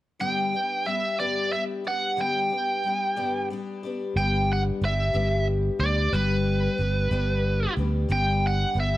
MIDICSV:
0, 0, Header, 1, 4, 480
1, 0, Start_track
1, 0, Key_signature, 1, "major"
1, 0, Tempo, 658617
1, 153, Time_signature, 6, 3, 24, 8
1, 6540, End_track
2, 0, Start_track
2, 0, Title_t, "Lead electric guitar"
2, 0, Program_c, 0, 29
2, 153, Note_on_c, 0, 79, 86
2, 630, Note_on_c, 0, 76, 74
2, 649, Note_off_c, 0, 79, 0
2, 869, Note_off_c, 0, 76, 0
2, 872, Note_on_c, 0, 74, 84
2, 1109, Note_off_c, 0, 74, 0
2, 1111, Note_on_c, 0, 76, 76
2, 1177, Note_off_c, 0, 76, 0
2, 1368, Note_on_c, 0, 78, 79
2, 1609, Note_off_c, 0, 78, 0
2, 1612, Note_on_c, 0, 79, 79
2, 2535, Note_off_c, 0, 79, 0
2, 3040, Note_on_c, 0, 79, 89
2, 3285, Note_off_c, 0, 79, 0
2, 3300, Note_on_c, 0, 78, 86
2, 3361, Note_off_c, 0, 78, 0
2, 3535, Note_on_c, 0, 76, 73
2, 3976, Note_off_c, 0, 76, 0
2, 4228, Note_on_c, 0, 74, 87
2, 4468, Note_on_c, 0, 71, 87
2, 4478, Note_off_c, 0, 74, 0
2, 5640, Note_off_c, 0, 71, 0
2, 5919, Note_on_c, 0, 79, 90
2, 6162, Note_off_c, 0, 79, 0
2, 6173, Note_on_c, 0, 78, 84
2, 6386, Note_off_c, 0, 78, 0
2, 6414, Note_on_c, 0, 76, 83
2, 6540, Note_off_c, 0, 76, 0
2, 6540, End_track
3, 0, Start_track
3, 0, Title_t, "Twelve-string acoustic guitar"
3, 0, Program_c, 1, 25
3, 143, Note_on_c, 1, 43, 62
3, 147, Note_on_c, 1, 50, 63
3, 149, Note_on_c, 1, 55, 72
3, 154, Note_on_c, 1, 59, 66
3, 157, Note_on_c, 1, 62, 64
3, 160, Note_on_c, 1, 67, 66
3, 378, Note_off_c, 1, 67, 0
3, 387, Note_off_c, 1, 62, 0
3, 387, Note_on_c, 1, 67, 49
3, 389, Note_off_c, 1, 43, 0
3, 391, Note_off_c, 1, 50, 0
3, 392, Note_off_c, 1, 55, 0
3, 394, Note_off_c, 1, 59, 0
3, 396, Note_on_c, 1, 62, 41
3, 406, Note_on_c, 1, 59, 39
3, 408, Note_on_c, 1, 55, 36
3, 613, Note_off_c, 1, 55, 0
3, 622, Note_on_c, 1, 55, 54
3, 626, Note_off_c, 1, 59, 0
3, 631, Note_off_c, 1, 67, 0
3, 634, Note_on_c, 1, 59, 54
3, 635, Note_off_c, 1, 62, 0
3, 643, Note_on_c, 1, 62, 55
3, 648, Note_on_c, 1, 67, 59
3, 859, Note_off_c, 1, 67, 0
3, 863, Note_off_c, 1, 62, 0
3, 864, Note_off_c, 1, 59, 0
3, 868, Note_off_c, 1, 55, 0
3, 868, Note_on_c, 1, 67, 55
3, 872, Note_on_c, 1, 62, 52
3, 873, Note_on_c, 1, 59, 56
3, 877, Note_on_c, 1, 55, 56
3, 883, Note_on_c, 1, 50, 50
3, 885, Note_on_c, 1, 43, 50
3, 1097, Note_off_c, 1, 55, 0
3, 1105, Note_on_c, 1, 55, 49
3, 1107, Note_off_c, 1, 59, 0
3, 1111, Note_off_c, 1, 67, 0
3, 1114, Note_off_c, 1, 62, 0
3, 1116, Note_on_c, 1, 59, 55
3, 1119, Note_off_c, 1, 50, 0
3, 1120, Note_off_c, 1, 43, 0
3, 1124, Note_on_c, 1, 62, 57
3, 1127, Note_on_c, 1, 67, 60
3, 1335, Note_off_c, 1, 67, 0
3, 1340, Note_off_c, 1, 62, 0
3, 1344, Note_on_c, 1, 67, 46
3, 1347, Note_off_c, 1, 59, 0
3, 1348, Note_on_c, 1, 62, 45
3, 1350, Note_off_c, 1, 55, 0
3, 1356, Note_on_c, 1, 59, 42
3, 1364, Note_on_c, 1, 55, 37
3, 1577, Note_on_c, 1, 43, 64
3, 1580, Note_off_c, 1, 55, 0
3, 1581, Note_off_c, 1, 59, 0
3, 1582, Note_on_c, 1, 50, 67
3, 1584, Note_off_c, 1, 62, 0
3, 1589, Note_on_c, 1, 55, 67
3, 1590, Note_off_c, 1, 67, 0
3, 1590, Note_on_c, 1, 59, 65
3, 1593, Note_on_c, 1, 62, 70
3, 1599, Note_on_c, 1, 67, 73
3, 1812, Note_off_c, 1, 67, 0
3, 1821, Note_on_c, 1, 67, 50
3, 1823, Note_off_c, 1, 62, 0
3, 1827, Note_off_c, 1, 43, 0
3, 1829, Note_off_c, 1, 50, 0
3, 1830, Note_off_c, 1, 59, 0
3, 1831, Note_on_c, 1, 62, 43
3, 1832, Note_off_c, 1, 55, 0
3, 1839, Note_on_c, 1, 59, 42
3, 1848, Note_on_c, 1, 55, 37
3, 2058, Note_off_c, 1, 55, 0
3, 2067, Note_on_c, 1, 55, 54
3, 2068, Note_off_c, 1, 59, 0
3, 2068, Note_off_c, 1, 67, 0
3, 2074, Note_off_c, 1, 62, 0
3, 2077, Note_on_c, 1, 59, 52
3, 2087, Note_on_c, 1, 62, 49
3, 2093, Note_on_c, 1, 67, 58
3, 2296, Note_off_c, 1, 67, 0
3, 2301, Note_off_c, 1, 62, 0
3, 2304, Note_off_c, 1, 59, 0
3, 2305, Note_on_c, 1, 67, 73
3, 2308, Note_off_c, 1, 55, 0
3, 2310, Note_on_c, 1, 62, 70
3, 2313, Note_on_c, 1, 59, 71
3, 2317, Note_on_c, 1, 50, 55
3, 2317, Note_on_c, 1, 55, 56
3, 2319, Note_on_c, 1, 43, 56
3, 2544, Note_off_c, 1, 55, 0
3, 2550, Note_off_c, 1, 59, 0
3, 2550, Note_off_c, 1, 67, 0
3, 2553, Note_off_c, 1, 62, 0
3, 2553, Note_on_c, 1, 55, 61
3, 2557, Note_off_c, 1, 43, 0
3, 2557, Note_off_c, 1, 50, 0
3, 2559, Note_on_c, 1, 59, 57
3, 2571, Note_on_c, 1, 62, 68
3, 2573, Note_on_c, 1, 67, 63
3, 2784, Note_off_c, 1, 67, 0
3, 2793, Note_on_c, 1, 67, 57
3, 2794, Note_off_c, 1, 55, 0
3, 2796, Note_off_c, 1, 62, 0
3, 2797, Note_off_c, 1, 59, 0
3, 2805, Note_on_c, 1, 62, 50
3, 2814, Note_on_c, 1, 59, 45
3, 2817, Note_on_c, 1, 55, 42
3, 3034, Note_off_c, 1, 67, 0
3, 3038, Note_off_c, 1, 55, 0
3, 3039, Note_off_c, 1, 59, 0
3, 3039, Note_on_c, 1, 43, 66
3, 3040, Note_off_c, 1, 62, 0
3, 3040, Note_on_c, 1, 50, 65
3, 3047, Note_on_c, 1, 55, 74
3, 3047, Note_on_c, 1, 59, 69
3, 3048, Note_on_c, 1, 62, 74
3, 3052, Note_on_c, 1, 67, 67
3, 3501, Note_off_c, 1, 55, 0
3, 3510, Note_on_c, 1, 55, 56
3, 3517, Note_off_c, 1, 43, 0
3, 3517, Note_off_c, 1, 59, 0
3, 3518, Note_off_c, 1, 50, 0
3, 3519, Note_off_c, 1, 62, 0
3, 3520, Note_on_c, 1, 59, 49
3, 3524, Note_off_c, 1, 67, 0
3, 3528, Note_on_c, 1, 62, 61
3, 3535, Note_on_c, 1, 67, 57
3, 3735, Note_off_c, 1, 67, 0
3, 3737, Note_off_c, 1, 62, 0
3, 3740, Note_off_c, 1, 59, 0
3, 3743, Note_on_c, 1, 67, 59
3, 3746, Note_on_c, 1, 62, 58
3, 3748, Note_off_c, 1, 55, 0
3, 3749, Note_on_c, 1, 59, 55
3, 3756, Note_on_c, 1, 55, 57
3, 3757, Note_on_c, 1, 50, 56
3, 3760, Note_on_c, 1, 43, 44
3, 4211, Note_off_c, 1, 67, 0
3, 4220, Note_on_c, 1, 67, 52
3, 4221, Note_off_c, 1, 62, 0
3, 4230, Note_on_c, 1, 62, 43
3, 4235, Note_off_c, 1, 50, 0
3, 4235, Note_off_c, 1, 55, 0
3, 4235, Note_off_c, 1, 59, 0
3, 4237, Note_off_c, 1, 43, 0
3, 4238, Note_on_c, 1, 59, 42
3, 4246, Note_on_c, 1, 55, 42
3, 4467, Note_off_c, 1, 67, 0
3, 4467, Note_on_c, 1, 43, 69
3, 4468, Note_off_c, 1, 55, 0
3, 4469, Note_off_c, 1, 59, 0
3, 4470, Note_off_c, 1, 62, 0
3, 4473, Note_on_c, 1, 50, 70
3, 4477, Note_on_c, 1, 55, 68
3, 4477, Note_on_c, 1, 59, 63
3, 4479, Note_on_c, 1, 62, 81
3, 4486, Note_on_c, 1, 67, 77
3, 4932, Note_off_c, 1, 55, 0
3, 4941, Note_on_c, 1, 55, 56
3, 4946, Note_off_c, 1, 59, 0
3, 4948, Note_off_c, 1, 62, 0
3, 4949, Note_on_c, 1, 59, 51
3, 4950, Note_off_c, 1, 43, 0
3, 4953, Note_off_c, 1, 50, 0
3, 4957, Note_on_c, 1, 62, 56
3, 4958, Note_off_c, 1, 67, 0
3, 4966, Note_on_c, 1, 67, 60
3, 5171, Note_off_c, 1, 67, 0
3, 5177, Note_off_c, 1, 62, 0
3, 5179, Note_on_c, 1, 67, 67
3, 5182, Note_off_c, 1, 59, 0
3, 5184, Note_off_c, 1, 55, 0
3, 5185, Note_on_c, 1, 62, 65
3, 5191, Note_on_c, 1, 59, 61
3, 5193, Note_on_c, 1, 55, 63
3, 5196, Note_on_c, 1, 50, 65
3, 5202, Note_on_c, 1, 43, 56
3, 5651, Note_off_c, 1, 67, 0
3, 5660, Note_on_c, 1, 67, 54
3, 5663, Note_off_c, 1, 62, 0
3, 5671, Note_on_c, 1, 62, 56
3, 5672, Note_off_c, 1, 55, 0
3, 5674, Note_off_c, 1, 50, 0
3, 5675, Note_off_c, 1, 59, 0
3, 5677, Note_off_c, 1, 43, 0
3, 5677, Note_on_c, 1, 59, 48
3, 5685, Note_on_c, 1, 55, 48
3, 5893, Note_on_c, 1, 43, 68
3, 5894, Note_off_c, 1, 55, 0
3, 5894, Note_off_c, 1, 59, 0
3, 5897, Note_off_c, 1, 62, 0
3, 5898, Note_on_c, 1, 50, 72
3, 5899, Note_off_c, 1, 67, 0
3, 5903, Note_on_c, 1, 55, 79
3, 5903, Note_on_c, 1, 59, 64
3, 5905, Note_on_c, 1, 62, 77
3, 5908, Note_on_c, 1, 67, 68
3, 6361, Note_off_c, 1, 55, 0
3, 6369, Note_on_c, 1, 55, 55
3, 6378, Note_off_c, 1, 59, 0
3, 6380, Note_off_c, 1, 62, 0
3, 6381, Note_off_c, 1, 43, 0
3, 6381, Note_on_c, 1, 59, 56
3, 6384, Note_off_c, 1, 50, 0
3, 6389, Note_off_c, 1, 67, 0
3, 6389, Note_on_c, 1, 62, 60
3, 6397, Note_on_c, 1, 67, 62
3, 6540, Note_off_c, 1, 55, 0
3, 6540, Note_off_c, 1, 59, 0
3, 6540, Note_off_c, 1, 62, 0
3, 6540, Note_off_c, 1, 67, 0
3, 6540, End_track
4, 0, Start_track
4, 0, Title_t, "Fingered electric bass"
4, 0, Program_c, 2, 33
4, 3030, Note_on_c, 2, 31, 81
4, 3426, Note_off_c, 2, 31, 0
4, 3509, Note_on_c, 2, 31, 70
4, 3708, Note_off_c, 2, 31, 0
4, 3750, Note_on_c, 2, 31, 76
4, 4146, Note_off_c, 2, 31, 0
4, 4223, Note_on_c, 2, 38, 80
4, 4424, Note_off_c, 2, 38, 0
4, 4464, Note_on_c, 2, 31, 84
4, 4862, Note_off_c, 2, 31, 0
4, 4949, Note_on_c, 2, 31, 71
4, 5147, Note_off_c, 2, 31, 0
4, 5183, Note_on_c, 2, 31, 76
4, 5580, Note_off_c, 2, 31, 0
4, 5663, Note_on_c, 2, 38, 90
4, 5863, Note_off_c, 2, 38, 0
4, 5900, Note_on_c, 2, 31, 93
4, 6298, Note_off_c, 2, 31, 0
4, 6377, Note_on_c, 2, 31, 78
4, 6540, Note_off_c, 2, 31, 0
4, 6540, End_track
0, 0, End_of_file